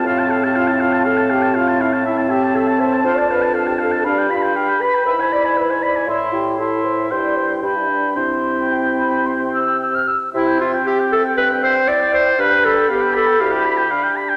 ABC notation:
X:1
M:4/4
L:1/16
Q:1/4=118
K:F
V:1 name="Flute"
a16 | [K:C] a16 | b16 | c'4 c'4 c'4 b4 |
c'4 g2 b2 c'2 e'2 e' f' e'2 | g16 | b16 |]
V:2 name="Oboe"
f a f a f a f a f a f a f a f a | [K:C] e a e a e a e a f a f a f a f a | f g b g f g b g e ^g b g e g b g | e4 e4 g4 g4 |
g12- g2 z2 | e g e g e g e g e g e g e g e g | f g b g f g b g f g b g f g b g |]
V:3 name="French horn"
F2 A G F E F2 A2 G2 F2 E2 | [K:C] E2 G2 A2 c2 c d B2 A G A2 | D2 F2 G2 B2 B c d2 B c d2 | E2 G2 A2 c2 c d c2 G E D2 |
C12- C2 z2 | C12 E4 | D4 B,4 E4 D4 |]
V:4 name="Clarinet"
C16 | [K:C] C8 D8- | D6 z2 E8 | E4 E4 E4 D4 |
E12- E2 z2 | E2 F2 G2 A2 B2 c2 d2 c2 | B2 A2 G2 A2 G6 z2 |]
V:5 name="Bassoon" clef=bass
A,,16- | [K:C] A,,8 F,,8 | G,,6 z2 ^G,,8 | A,,8 G,,4 G,,4 |
C,12- C,2 z2 | C,4 z4 G,,4 z4 | G,,4 z4 D,,4 z4 |]